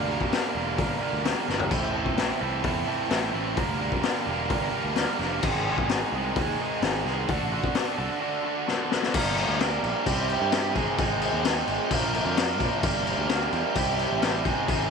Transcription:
Already playing: D2 A#4
0.09 G2 D3 G3 A#3 D4 A#4
0.21 kick
0.32 G2 D3 G3 A#3 D4 A#4, snare, open hi-hat
0.55 E1 G2 D3 G3 A#3 D4 A#4
0.77 G1 G2 D3 G3 A#3 D4 A#4, kick, open hi-hat
1.00 G2 D3 G3 A#3 D4 A#4
1.13 D2
1.24 G2 D3 G3 A#3 D4 A#4, snare, open hi-hat
1.48 G1 G2 D3 G3 A#3 D4 A#4, snare
1.60 floor tom
1.71 A1 A2 E3 C4 E4 A4, kick, crash
1.83 A1
1.93 A2 E3 C4 E4 A4
2.06 kick
2.17 A2 E3 C4 E4 A4, snare, open hi-hat
2.40 C2 A2 E3 C4 E4 A4
2.62 E2 A2 E3 C4 E4 A4, kick, open hi-hat
2.86 A2 E3 C4 E4 A4
3.09 A1 A2 E3 C4 E4 A4, snare, open hi-hat
3.32 A1 A2 E3 C4 E4 A4
3.56 G1 G2 D3 G3 A#3 D4 A#4, kick, open hi-hat
3.69 D2
3.80 G2 D3 G3 A#3 D4 A#4
3.92 kick
4.03 G2 D3 G3 A#3 D4 A#4, snare, open hi-hat
4.27 E1 G2 D3 G3 A#3 D4 A#4
4.50 G1 G2 D3 G3 A#3 D4 A#4, kick, open hi-hat
4.74 G2 D3 G3 A#3 D4 A#4
4.85 D2
4.96 G2 D3 G3 A#3 D4 A#4, snare, open hi-hat
5.19 F1 G2 D3 G3 A#3 D4 A#4, snare
5.43 G#1 G#2 D#3 G#3 C4 D#4 G#4, kick, crash
5.54 G#1
5.67 G#2 D#3 G#3 C4 D#4 G#4
5.78 kick
5.89 G#2 D#3 G#3 C4 D#4 G#4, snare, open hi-hat
6.12 C2 G#2 D#3 G#3 C4 D#4 G#4
6.36 D#2 G#2 D#3 G#3 C4 D#4 G#4, kick, open hi-hat
6.59 G#2 D#3 G#3 C4 D#4 G#4
6.82 G#1 G#2 D#3 G#3 C4 D#4 G#4, snare, open hi-hat
7.04 C2 G#2 D#3 G#3 C4 D#4 G#4, snare
7.28 D2 D3 D4 F#4 A4, kick, open hi-hat
7.40 A1
7.52 D3 D4 F#4 A4
7.64 kick
7.75 D3 D4 F#4 A4, snare, open hi-hat
7.98 C2 D3 D4 F#4 A4
8.21 D3 D4 F#4 A4
8.45 D3 D4 F#4 A4
8.67 D3 D4 F#4 A4, snare
8.91 D3 D4 F#4 A4, snare
9.03 snare
9.13 G1 G2 D3 G3 A#3 D4 A#4, kick, crash
9.36 G3 A#3 D4 A#4, crash
9.49 D2
9.59 G3 A#3 D4 A#4, snare, crash
9.83 A#1, crash
10.06 C2 C3 G3 C4 E4 G4, kick, crash
10.29 C4 E4 G4, crash
10.41 G2
10.52 G3 C4 E4 G4, snare, crash
10.75 G#1 G#3 C4 D#4 G#4, kick, crash
10.97 G#1 G#3 C4 D#4 G#4, kick, crash
11.21 C4 D#4 G#4, crash
11.33 D#2
11.44 G#3 C4 D#4 G#4, snare, crash
11.67 G#1, crash
11.91 A#1 A#2 D3 F3 A#3 D4 A#4, kick, crash
12.14 F3 A#3 D4 A#4, crash
12.26 F2
12.37 F3 A#3 D4 A#4, snare, crash
12.59 A#2 F3 A#3 D4 A#4, kick, crash
12.82 G1 G2 D3 G3 A#3 D4 A#4, kick, crash
13.06 G3 A#3 D4 A#4, crash
13.18 D2
13.28 G3 A#3 D4 A#4, snare, crash
13.53 E2, crash
13.75 C2 C3 G3 C4 E4 G4, kick, crash
13.98 C4 E4 G4, crash
14.11 A1
14.22 G3 C4 E4 G4, snare, crash
14.45 G#1 G#2 D#3 G#3 C4 D#4 G#4, kick, crash
14.68 G#1 G#2 D#3 G#3 C4 D#4 G#4, kick, crash

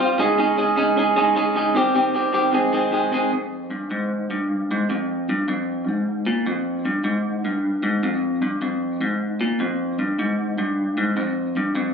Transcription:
0.00 F3 G3 C4 F4
0.18 C#3 G#3 C#4 D#4 G#4
0.37 C#3 G#3 C#4 D#4 G#4
0.56 C#3 G#3 C#4 D#4 G#4
0.76 C#3 G#3 C#4 D#4 G#4
0.96 C#3 G#3 C#4 D#4 G#4
1.16 C#3 G#3 C#4 D#4 G#4
1.35 C#3 G#3 C#4 D#4 G#4
1.55 C#3 G#3 C#4 D#4 G#4
1.74 C3 D#3 G3 C4 G4
1.94 C3 D#3 G3 C4 G4
2.14 C3 D#3 G3 C4 G4
2.32 C3 D#3 G3 C4 G4
2.52 F2 C3 D#3 G#3 C4 G#4
2.72 F2 C3 D#3 G#3 C4 G#4
2.91 F2 C3 D#3 G#3 C4 G#4
3.11 F2 C3 D#3 G#3 C4 G#4
3.32 F2
3.71 G2
3.91 G#2
4.31 G2
4.71 G#2
4.90 F2
5.29 G2
5.48 F2
5.88 G#2
6.26 A#2
6.46 F2
6.85 G2
7.04 G#2
7.45 G2
7.83 G#2
8.03 F2
8.42 G2
8.62 F2
9.01 G#2
9.41 A#2
9.60 F2
9.99 G2
10.19 G#2
10.58 G2
10.98 G#2
11.17 F2
11.57 G2
11.75 F2

